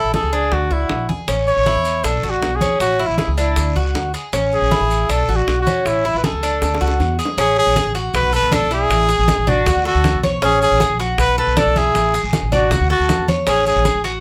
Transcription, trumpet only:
Already playing: A4
0.14 A4
0.33 G#4
0.53 F#4
0.73 E4
1.48 C#5
2.04 A4
2.30 F#4
2.56 G#4
2.81 F#4
3.07 E4
3.39 E4
4.54 G#4
5.11 A4
5.36 F#4
5.61 F#4
5.87 E4
6.18 B4
6.25 A4
7.40 G#4
7.59 G#4
8.15 B4
8.35 B4
8.54 A4
8.73 G#4
9.49 F#4
9.87 F#4
10.44 G#4
10.62 G#4
11.20 B4
11.39 B4
11.58 A4
11.77 G#4
12.53 F#4
12.91 F#4
13.48 G#4
13.68 G#4

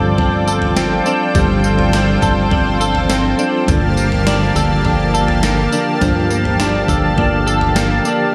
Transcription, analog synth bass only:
Already playing: G1
1.35 G1
2.22 G1
3.68 G1
4.55 G1
6.01 G1
6.88 G1

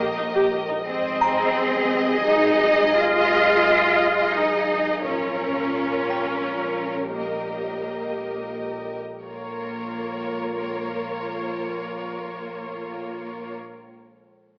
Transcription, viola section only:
0.00 G4
0.17 D#4
0.35 G4
0.53 G4
0.69 D#4
0.88 G#4
5.05 F4
7.15 G4
9.24 F4

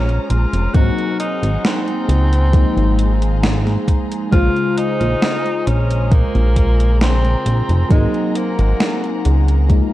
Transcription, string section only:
Already playing: G#4 C5 A#5
0.75 F#5
2.54 F5
4.33 C5 A#5
7.91 F#5
9.70 F5

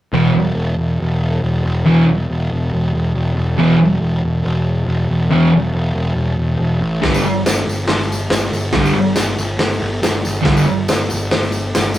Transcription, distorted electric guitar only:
0.13 E2 B2 E3
1.86 E2 B2 E3
3.58 E2 B2 E3
5.30 E2 B2 E3
7.01 G2 D3 G3
8.73 G2 D3 G3
10.42 G2 D3 G3

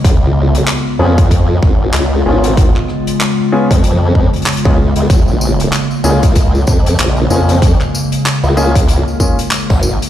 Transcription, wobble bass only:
0.05 C#2
0.48 C2
0.99 F2
1.63 G#1
1.94 C#2
2.26 G#1
3.71 F2
4.15 F2
4.65 C#2
4.96 C#2
5.10 A#1
6.04 C#2
6.67 F2
6.99 A#1
7.30 F2
8.44 C#2
9.70 G#1

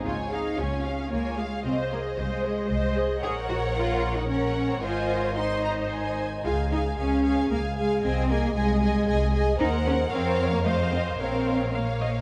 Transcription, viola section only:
0.06 F4
0.32 G#4
0.60 F4
0.86 G#4
1.12 F4
1.39 G#4
1.66 C5
1.93 G#4
2.19 C5
2.45 G#4
2.70 C5
2.97 G#4
3.24 A#4
4.29 A#4
4.83 C5
5.36 C5
6.46 G#4
6.72 G#4
6.98 G#4
7.24 G#4
7.51 G#4
7.77 G#4
8.04 G#4
8.30 G#4
8.56 G#4
8.83 G#4
9.08 G#4
9.35 G#4
9.60 A#4
10.12 A#4
10.65 C5
11.20 A#4
11.74 F5
12.01 D#5

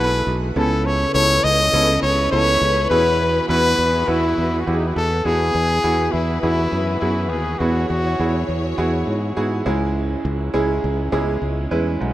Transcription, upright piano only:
Already playing: B2 B3 E4 F#4 G#4 A4
0.04 B4
0.56 C#3 B3 C#4 E4 A4
1.15 B3 C#4 E4 A4
1.74 B3 C#4 E4 A4
2.32 B3 C#4 E4 A4
2.91 B2 B3 E4 F#4 G#4
3.49 B3 E4 F#4 B4
4.08 B3 E4 F#4 B4
4.67 B3 E4 F#4 G4
4.73 G#4
5.26 B2 B3 E4 F#4 G#4
5.84 B3 E4 F#4 G#4
6.43 B3 E4 F#4 G#4
7.02 B3 E4 F#4 G#4
7.61 B2 B3 E4 F#4 G#4
8.20 B3 E4 F#4 G#4
8.78 B3 E4 F#4 G#4
9.37 B3 E4 F#4 G#4
9.66 G#2 G#3 C#4 E4 G#4
10.54 G#3 C#4 E4 G#4
11.12 G#3 C#4 E4 G#4
11.71 G#3 C#4 E4 B4
12.00 G#2

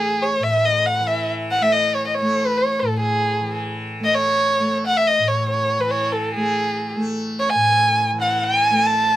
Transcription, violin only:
Already playing: G#4
0.22 C#5
0.43 E5
0.65 D#5
0.86 F#5
1.07 E5
1.51 F#5
1.62 E5
1.73 D#5
1.94 C#5
2.07 D#5
2.15 C#5
2.46 B4
2.57 C#5
2.79 A4
2.99 G#4
4.04 D#5
4.14 C#5
4.86 F#5
4.97 E5
5.07 D#5
5.28 C#5
5.49 C#5
5.80 B4
5.91 C#5
6.12 A4
6.34 G#4
7.39 C#5
7.49 G#5
8.21 F#5
8.44 G#5
8.86 A5

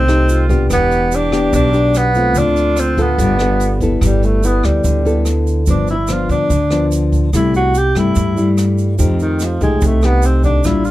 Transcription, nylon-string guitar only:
Already playing: C3
0.08 A3 D#4 G4
0.50 B3 D4 G4
0.70 E3
1.32 B3 D4 G4
1.53 B2
1.73 B3 D4 G4
2.16 A3 C4 F4
2.36 D3
2.98 B3 F4 A4
3.20 G3
3.41 B3 F4 A4
3.82 B3 E4 A4
4.03 G3
4.44 B3 E4 A4
4.85 D3
5.05 B3 E4 A4
5.68 G2 F3 B3 D4
6.10 F3 B3 D4
6.51 D3
6.71 F3 B3 D4
7.34 C3 G3 A3 E4
7.96 G3 A3 E4
8.17 G2
8.38 G3 A3 E4
8.99 F3 A3 D#4 G4
9.61 A3 D#4 G4
9.83 C3
10.03 A3 D#4 G4
10.65 A#2 G3 D4 F4

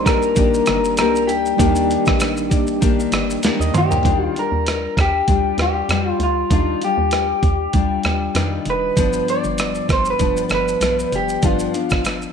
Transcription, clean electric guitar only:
0.06 A#4
0.98 A#4
1.27 G4
3.78 G4
4.25 F4
4.39 A#4
5.01 G4
5.62 G4
6.09 F4
6.23 F4
6.53 F4
6.85 G4
8.70 B4
9.30 D5
9.92 C5
10.10 B4
10.55 B4
11.16 G4
11.45 F4

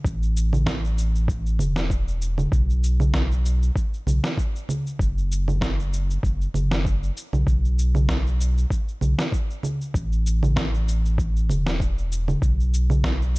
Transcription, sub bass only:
0.04 A1
1.59 E1
2.52 B1
4.06 B1
4.99 F#1
6.23 F#1
6.54 F#1
7.33 B1
7.47 B1
9.01 B1
9.94 A1
11.49 E1
12.42 B1

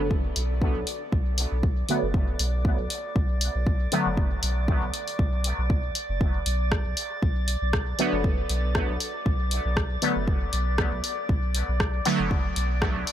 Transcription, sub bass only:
0.00 F#1
0.36 B1
0.76 B1
1.12 B1
1.52 B1
2.03 F#1
2.39 B1
2.79 B1
3.16 B1
3.55 B1
4.06 F#1
4.43 B1
4.82 B1
5.19 B1
5.58 B1
6.09 F#1
6.46 B1
6.86 B1
7.22 B1
7.62 B1
8.13 F#1
8.49 B1
8.89 B1
9.26 B1
9.65 B1
10.16 F#1
10.53 B1
10.92 B1
11.29 B1
11.69 B1
12.20 F#1
12.56 B1
12.96 B1

